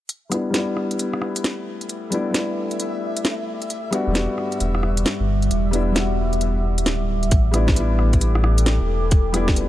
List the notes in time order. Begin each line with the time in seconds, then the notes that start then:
0.09 A4 E5 G5 D6, closed hi-hat
0.30 G3 B3 D4, cross-stick, closed hi-hat
0.34 E4
0.50 G3 B3, snare, closed hi-hat
0.56 D4 E4
0.77 cross-stick
0.91 closed hi-hat
0.99 closed hi-hat
1.13 cross-stick
1.22 cross-stick
1.36 closed hi-hat
1.44 snare, closed hi-hat
1.81 closed hi-hat
1.89 closed hi-hat
2.10 G3 B3 D4 E4, closed hi-hat
2.31 G3 B3, snare, closed hi-hat
2.36 D4 E4
2.71 closed hi-hat
2.80 closed hi-hat
3.17 closed hi-hat
3.25 snare, closed hi-hat
3.62 closed hi-hat
3.70 G3 E5, closed hi-hat
3.91 G3 B3 D4 F#4, cross-stick, closed hi-hat
4.07 E1 G3
4.14 B3 D4, snare, closed hi-hat
4.19 F#4
4.38 cross-stick
4.52 closed hi-hat
4.60 E1, closed hi-hat
4.75 cross-stick
4.83 cross-stick
4.97 closed hi-hat
5.06 snare, closed hi-hat
5.20 G1
5.42 closed hi-hat
5.51 E1, closed hi-hat
5.71 G3 B3 D4, closed hi-hat
5.75 E4
5.92 G3 B3
5.96 D4 F#4, snare, closed hi-hat
6.33 closed hi-hat
6.41 closed hi-hat
6.78 D1, closed hi-hat
6.86 snare, closed hi-hat
7.23 closed hi-hat
7.31 A1 A4 G5 D6, kick, closed hi-hat
7.51 G3 B3 D4, cross-stick, closed hi-hat
7.55 E4
7.68 kick, snare
7.72 G3 B3
7.76 D4 E4, closed hi-hat
7.99 cross-stick
8.13 kick, closed hi-hat
8.21 closed hi-hat
8.35 cross-stick
8.44 cross-stick
8.58 closed hi-hat
8.66 snare, closed hi-hat
8.81 E1
9.11 kick, closed hi-hat
9.32 G3 B3 D4 E4, cross-stick, closed hi-hat
9.48 kick, snare
9.53 G3 B3, closed hi-hat
9.58 D4 E4